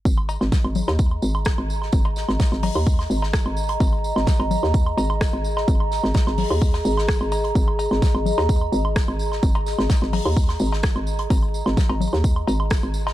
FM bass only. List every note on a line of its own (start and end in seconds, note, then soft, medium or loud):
0.05 0.38 G#1 medium
0.41 0.50 G#1 loud
0.64 0.84 G#1 medium
0.88 1.20 D#2 medium
1.23 1.55 G#1 loud
1.58 1.90 G#1 medium
1.93 2.25 G#1 medium
2.29 2.38 G#1 medium
2.52 2.71 G#1 medium
2.75 3.07 D#2 medium
3.10 3.43 G#1 medium
3.46 3.77 G#1 medium
3.80 4.13 G#1 medium
4.16 4.25 G#1 loud
4.40 4.59 G#1 medium
4.63 4.95 D#2 medium
4.97 5.30 G#1 loud
5.33 5.65 G#1 medium
5.68 6.00 G#1 loud
6.04 6.13 G#1 loud
6.27 6.46 G#1 medium
6.51 6.82 D#2 medium
6.85 7.18 G#1 loud
7.21 7.52 G#1 medium
7.55 7.88 G#1 medium
7.91 8.00 G#1 medium
8.15 8.34 G#1 medium
8.38 8.70 D#2 medium
8.72 9.05 G#1 loud
9.08 9.40 G#1 medium
9.43 9.75 G#1 medium
9.79 9.88 G#1 loud
10.02 10.21 G#1 medium
10.26 10.57 D#2 medium
10.60 10.93 G#1 loud
10.96 11.27 G#1 medium
11.30 11.63 G#1 medium
11.66 11.75 G#1 loud
11.90 12.09 G#1 medium
12.13 12.45 D#2 medium
12.48 12.80 G#1 loud
12.83 13.13 G#1 medium